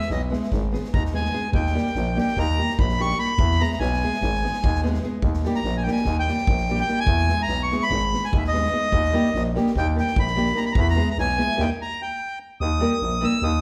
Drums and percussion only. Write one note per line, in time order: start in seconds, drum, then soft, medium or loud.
0.01 snare soft
0.10 snare soft
0.33 snare soft
0.43 snare soft
0.52 kick medium
0.52 snare soft
0.74 snare soft
0.84 snare soft
0.94 kick loud
1.05 snare soft
1.16 snare soft
1.25 snare soft
1.34 snare soft
1.53 kick medium
1.66 snare soft
1.77 snare soft
1.87 snare soft
1.95 snare soft
2.18 snare soft
2.28 snare soft
2.37 kick medium
2.37 snare soft
2.70 snare soft
2.79 kick loud
2.89 snare soft
3.00 snare soft
3.10 snare soft
3.20 snare soft
3.39 kick loud
3.51 snare soft
3.62 snare soft
3.71 snare soft
3.82 snare soft
3.93 snare soft
4.14 snare soft
4.22 kick medium
4.22 snare soft
4.34 snare soft
4.46 snare soft
4.54 snare soft
4.64 kick loud
4.75 snare soft
4.85 snare soft
4.94 snare soft
5.03 snare soft
5.22 kick medium
5.33 snare soft
5.44 snare soft
5.54 snare soft
5.64 snare soft
5.87 snare soft
5.96 snare soft
6.05 kick medium
6.05 snare soft
6.27 snare soft
6.38 snare soft
6.47 kick loud
6.57 snare soft
6.68 snare soft
6.77 snare soft
6.87 snare soft
7.07 kick loud
7.18 snare soft
7.29 snare soft
7.48 snare soft
7.71 snare soft
7.81 snare soft
7.91 kick medium
7.91 snare soft
8.14 snare soft
8.24 snare soft
8.33 kick medium
8.44 snare soft
8.55 snare soft
8.65 snare soft
8.74 snare soft
8.92 kick medium
9.04 snare soft
9.15 snare soft
9.25 snare soft
9.35 snare soft
9.57 snare soft
9.67 snare soft
9.76 kick medium
9.76 snare soft
9.97 snare soft
10.07 snare soft
10.16 kick loud
10.27 snare soft
10.37 snare soft
10.46 snare soft
10.56 snare soft
10.75 kick loud
10.87 snare soft
10.98 snare soft
11.18 snare soft
11.29 snare soft
11.40 snare soft
11.51 snare soft
11.60 snare soft